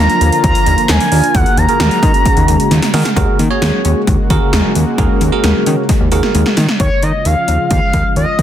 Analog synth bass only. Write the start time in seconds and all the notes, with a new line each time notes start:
0.21 D#2
0.44 D#2
0.67 D#2
0.89 D#2
1.12 D#2
1.35 D#2
1.57 D#2
1.80 D#2
2.03 D#3
2.37 D#2
2.48 D#2
2.71 D#2
2.94 D#3
3.17 D#2
3.39 D#3
3.62 D#2
3.85 D#2
4.07 D#2
4.30 D#2
4.53 D#2
4.76 D#2
4.98 D#2
5.21 D#2
5.44 D#2
5.67 D#3
6.01 D#2
6.12 D#2
6.35 D#2
6.57 D#3
6.80 D#2
7.03 D#3
7.26 D#2
7.48 D#2
7.71 D#2
7.94 D#2
8.16 D#2
8.39 D#2